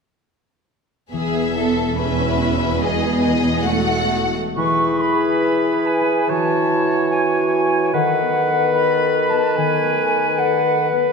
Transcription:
1.11 4.32 E1 soft
1.11 4.32 E2 soft
1.11 2.79 E3 soft
1.11 1.94 B3 soft
1.11 1.53 G#4 soft
1.11 1.94 E5 soft
1.56 2.39 E4 soft
1.56 2.00 A4 soft
1.98 2.81 C#4 soft
1.98 2.84 G#4 soft
1.98 2.79 B4 soft
1.98 2.79 E5 soft
2.40 2.84 E4 soft
2.80 4.55 E3 soft
2.80 3.66 B3 soft
2.80 3.66 G#4 soft
2.80 3.21 D#5 soft
3.21 4.11 D#4 soft
3.21 3.65 D#5 soft
3.63 4.36 A3 soft
3.63 4.37 F#4 soft
3.63 4.61 A4 soft
3.63 4.35 F#5 soft
4.12 4.61 D#4 soft
4.56 6.28 E3 soft
4.56 7.89 E3 soft
4.56 6.32 G#4 soft
4.56 6.31 B4 soft
4.56 4.97 C#6 medium
4.86 5.99 E4 soft
5.00 5.87 B5 soft
5.15 5.71 G#4 soft
5.44 7.96 E5 soft
5.72 6.32 G#4 soft
5.87 6.29 G#5 soft
6.01 7.96 E4 soft
6.28 7.96 E3 soft
6.28 7.94 F#4 soft
6.28 7.93 C#5 soft
6.28 7.11 A5 medium
6.57 7.65 C#4 soft
6.85 7.37 F#4 soft
7.10 7.96 C#5 soft
7.10 7.90 G#5 soft
7.39 11.12 F#4 soft
7.66 7.97 C#4 soft
7.92 9.56 D#3 soft
7.92 10.88 D#3 soft
7.92 11.12 A4 soft
7.92 11.12 B4 soft
7.92 8.75 F#5 soft
8.20 9.30 B3 soft
8.49 9.02 B4 soft
8.74 10.37 A4 soft
8.74 9.28 B5 medium
9.03 10.10 B4 soft
9.30 10.91 B3 soft
9.30 9.57 A5 soft
9.56 11.12 D#3 soft
9.56 10.37 G#5 medium
9.83 11.12 A3 soft
10.11 10.65 B4 soft
10.37 11.12 A4 soft
10.37 10.88 F#5 medium
10.66 11.12 B4 soft
10.93 11.12 B3 soft

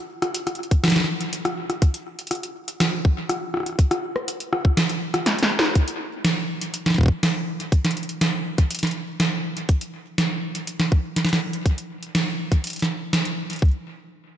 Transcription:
0.22 cross-stick medium
0.22 closed hi-hat soft
0.35 closed hi-hat medium
0.47 cross-stick medium
0.47 closed hi-hat soft
0.55 closed hi-hat soft
0.63 closed hi-hat soft
0.71 kick medium
0.71 closed hi-hat medium
0.84 cross-stick medium
0.84 snare loud
0.88 snare medium
0.88 closed hi-hat medium
0.92 snare medium
0.96 snare medium
0.96 closed hi-hat soft
1.00 snare soft
1.04 snare soft
1.21 closed hi-hat soft
1.33 closed hi-hat medium
1.45 cross-stick medium
1.45 closed hi-hat soft
1.70 cross-stick medium
1.70 closed hi-hat soft
1.82 kick loud
1.82 closed hi-hat medium
1.94 closed hi-hat medium
2.19 closed hi-hat soft
2.27 closed hi-hat soft
2.31 cross-stick medium
2.31 closed hi-hat medium
2.35 closed hi-hat soft
2.43 closed hi-hat soft
2.68 closed hi-hat medium
2.80 cross-stick medium
2.80 snare loud
2.80 closed hi-hat medium
3.05 kick loud
3.29 cross-stick medium
3.29 closed hi-hat medium
3.54 cross-stick medium
3.57 cross-stick soft
3.60 cross-stick soft
3.63 cross-stick soft
3.66 cross-stick soft
3.66 closed hi-hat soft
3.69 cross-stick soft
3.73 cross-stick soft
3.76 kick loud
3.76 cross-stick soft
3.76 closed hi-hat medium
3.91 cross-stick medium
3.91 closed hi-hat medium
4.16 cross-stick medium
4.28 closed hi-hat medium
4.40 closed hi-hat soft
4.53 cross-stick medium
4.65 kick medium
4.77 cross-stick medium
4.77 snare loud
4.77 closed hi-hat medium
4.89 closed hi-hat soft
5.14 cross-stick medium
5.14 closed hi-hat soft
5.26 snare medium
5.26 closed hi-hat medium
5.39 closed hi-hat soft
5.43 snare medium
5.59 snare loud
5.75 kick loud
5.75 closed hi-hat medium
5.88 closed hi-hat medium
6.25 snare loud
6.25 closed hi-hat medium
6.61 closed hi-hat medium
6.74 closed hi-hat medium
6.86 snare medium
6.90 snare soft
6.94 snare soft
6.98 kick soft
7.01 kick medium
7.03 kick medium
7.06 kick medium
7.08 kick medium
7.23 snare loud
7.23 closed hi-hat medium
7.60 closed hi-hat soft
7.72 kick loud
7.72 closed hi-hat medium
7.85 snare medium
7.85 closed hi-hat medium
7.91 closed hi-hat soft
7.97 closed hi-hat soft
8.03 closed hi-hat soft
8.09 closed hi-hat soft
8.21 snare loud
8.21 closed hi-hat medium
8.58 kick medium
8.58 closed hi-hat medium
8.71 closed hi-hat medium
8.75 closed hi-hat medium
8.79 closed hi-hat soft
8.83 snare medium
8.83 closed hi-hat soft
8.87 closed hi-hat soft
8.91 closed hi-hat soft
9.20 snare loud
9.20 closed hi-hat medium
9.57 closed hi-hat soft
9.69 kick loud
9.69 closed hi-hat medium
9.81 closed hi-hat medium
10.18 snare loud
10.18 closed hi-hat medium
10.55 closed hi-hat soft
10.67 closed hi-hat medium
10.80 snare medium
10.92 kick loud
11.16 snare medium
11.16 closed hi-hat medium
11.25 snare medium
11.29 closed hi-hat soft
11.33 snare medium
11.53 closed hi-hat soft
11.66 kick loud
11.66 closed hi-hat medium
11.78 closed hi-hat soft
12.03 closed hi-hat soft
12.15 snare loud
12.15 closed hi-hat medium
12.52 kick medium
12.52 closed hi-hat soft
12.64 closed hi-hat medium
12.67 closed hi-hat medium
12.70 closed hi-hat soft
12.73 closed hi-hat soft
12.76 closed hi-hat soft
12.79 snare medium
12.79 closed hi-hat soft
12.82 closed hi-hat soft
12.84 closed hi-hat soft
13.13 snare loud
13.13 closed hi-hat medium
13.25 closed hi-hat soft
13.50 closed hi-hat soft
13.53 closed hi-hat soft
13.56 closed hi-hat soft
13.59 kick loud
13.59 closed hi-hat soft
13.68 closed hi-hat soft
13.71 closed hi-hat soft

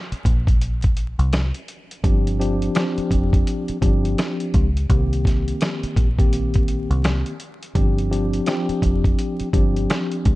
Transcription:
0.12 muted fingered electric bass stroke soft
0.12 closed hi-hat medium
0.25 1.15 A#1 medium
0.25 kick medium
0.25 closed hi-hat medium
0.47 kick loud
0.47 closed hi-hat medium
0.62 closed hi-hat loud
0.82 kick medium
0.82 closed hi-hat medium
0.97 closed hi-hat medium
1.19 1.51 C2 medium
1.19 closed hi-hat soft
1.33 cross-stick medium
1.33 snare loud
1.33 closed hi-hat medium
1.54 closed hi-hat medium
1.68 closed hi-hat medium
1.91 closed hi-hat medium
2.03 2.67 G1 loud
2.03 2.37 F3 medium
2.03 2.37 C4 medium
2.03 2.37 D4 medium
2.03 2.37 G4 loud
2.03 kick loud
2.03 closed hi-hat medium
2.27 closed hi-hat medium
2.39 2.73 F3 medium
2.39 2.73 C4 medium
2.39 2.73 D4 medium
2.39 2.73 G4 loud
2.39 closed hi-hat medium
2.62 closed hi-hat medium
2.75 3.76 F3 medium
2.75 3.76 C4 medium
2.75 3.76 D4 medium
2.75 3.76 G4 medium
2.75 cross-stick medium
2.75 snare loud
2.75 closed hi-hat loud
2.98 muted fingered electric bass stroke soft
2.98 closed hi-hat medium
3.11 3.43 F1 medium
3.11 kick medium
3.11 closed hi-hat medium
3.33 kick loud
3.33 closed hi-hat medium
3.47 closed hi-hat loud
3.68 muted fingered electric bass stroke soft
3.68 closed hi-hat medium
3.82 4.14 G1 medium
3.82 4.67 F3 loud
3.82 4.67 C4 medium
3.82 4.67 D4 medium
3.82 4.67 G4 loud
3.82 kick medium
3.82 closed hi-hat medium
4.05 closed hi-hat medium
4.18 cross-stick medium
4.18 snare loud
4.18 closed hi-hat medium
4.40 closed hi-hat medium
4.54 4.86 C#2 medium
4.54 kick loud
4.54 closed hi-hat medium
4.77 closed hi-hat medium
4.90 5.53 C2 loud
4.90 6.07 D#3 medium
4.90 6.07 A#3 medium
4.90 6.07 C4 medium
4.90 6.07 G4 loud
4.90 kick loud
4.90 closed hi-hat medium
5.13 closed hi-hat medium
5.25 kick medium
5.25 snare soft
5.25 closed hi-hat medium
5.48 closed hi-hat medium
5.61 cross-stick medium
5.61 snare loud
5.61 closed hi-hat loud
5.83 muted fingered electric bass stroke soft
5.83 closed hi-hat medium
5.96 6.86 A#1 medium
5.96 kick medium
5.96 closed hi-hat medium
6.19 7.32 D#3 medium
6.19 7.32 A#3 medium
6.19 7.32 C4 medium
6.19 7.32 G4 medium
6.19 kick loud
6.19 closed hi-hat medium
6.33 closed hi-hat loud
6.54 kick medium
6.54 closed hi-hat medium
6.68 closed hi-hat medium
6.90 7.22 C2 medium
6.90 closed hi-hat soft
7.04 cross-stick medium
7.04 snare loud
7.04 closed hi-hat medium
7.26 closed hi-hat medium
7.40 closed hi-hat medium
7.63 closed hi-hat medium
7.75 8.39 G1 loud
7.75 8.09 F3 medium
7.75 8.09 C4 medium
7.75 8.09 D4 medium
7.75 8.09 G4 loud
7.75 kick loud
7.75 closed hi-hat medium
7.98 closed hi-hat medium
8.11 8.44 F3 medium
8.11 8.45 C4 medium
8.11 8.45 D4 medium
8.11 8.45 G4 loud
8.11 closed hi-hat medium
8.33 closed hi-hat medium
8.46 9.47 F3 loud
8.46 9.47 C4 medium
8.46 9.47 D4 medium
8.46 9.47 G4 loud
8.46 cross-stick medium
8.46 snare loud
8.46 closed hi-hat loud
8.69 muted fingered electric bass stroke soft
8.69 closed hi-hat medium
8.82 9.14 F1 medium
8.82 kick medium
8.82 closed hi-hat medium
9.04 kick loud
9.04 closed hi-hat medium
9.19 closed hi-hat loud
9.40 muted fingered electric bass stroke soft
9.40 closed hi-hat medium
9.53 9.85 G1 medium
9.53 10.35 F3 loud
9.53 10.35 C4 medium
9.53 10.35 D4 medium
9.53 10.35 G4 loud
9.53 kick loud
9.53 closed hi-hat medium
9.76 closed hi-hat soft
9.90 cross-stick medium
9.90 snare loud
9.90 closed hi-hat medium
10.12 closed hi-hat medium
10.25 10.35 C#2 medium
10.25 kick loud
10.25 closed hi-hat medium

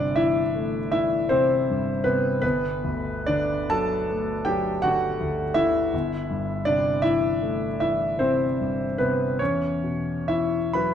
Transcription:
0.00 2.39 G1 medium
0.00 1.70 G2 soft
0.00 0.40 C3 soft
0.00 0.15 D4 medium
0.00 0.16 E4 medium
0.00 0.17 D5 medium
0.00 0.16 E5 medium
0.16 0.78 E3 soft
0.16 0.89 E4 medium
0.16 0.90 E5 medium
0.55 1.16 A3 soft
0.92 1.54 E3 soft
0.92 1.28 E4 medium
0.92 1.30 E5 medium
1.29 1.90 C3 soft
1.29 2.01 C4 medium
1.29 2.04 C5 medium
1.70 2.29 G2 soft
2.04 2.43 C3 soft
2.04 2.40 B3 medium
2.04 2.40 B4 medium
2.42 5.89 G1 medium
2.42 3.23 B3 medium
2.42 3.27 B4 medium
2.84 3.54 D2 soft
3.26 3.95 D3 soft
3.26 3.67 D4 medium
3.26 3.70 D5 medium
3.70 4.32 F#3 soft
3.70 4.43 A4 medium
3.70 4.46 A5 loud
4.09 4.69 A3 soft
4.45 5.06 F#3 soft
4.45 4.81 G4 medium
4.45 4.83 G5 medium
4.82 5.43 D3 soft
4.82 5.53 F#4 medium
4.82 5.56 F#5 medium
5.21 5.78 D2 soft
5.54 5.93 D3 soft
5.54 6.63 E4 medium
5.54 6.66 E5 medium
5.94 9.36 G1 medium
6.31 6.90 G2 soft
6.65 7.27 C3 soft
6.65 7.01 D4 medium
6.65 7.04 D5 medium
7.02 7.66 E3 soft
7.02 7.77 E4 medium
7.02 7.79 E5 medium
7.42 8.05 A3 soft
7.80 8.44 E3 soft
7.80 8.18 E4 medium
7.80 8.20 E5 medium
8.19 8.84 C3 soft
8.19 8.95 C4 medium
8.19 8.99 C5 medium
8.61 9.24 G2 soft
8.98 9.40 C3 soft
8.98 9.37 B3 medium
8.98 9.39 B4 medium
9.39 10.94 E2 soft
9.39 10.25 C#4 medium
9.39 10.29 C#5 medium
9.83 10.57 B2 soft
10.28 10.94 E3 soft
10.28 10.71 E4 medium
10.28 10.74 E5 medium
10.73 10.94 F#3 soft
10.73 10.94 B4 medium
10.73 10.94 B5 medium

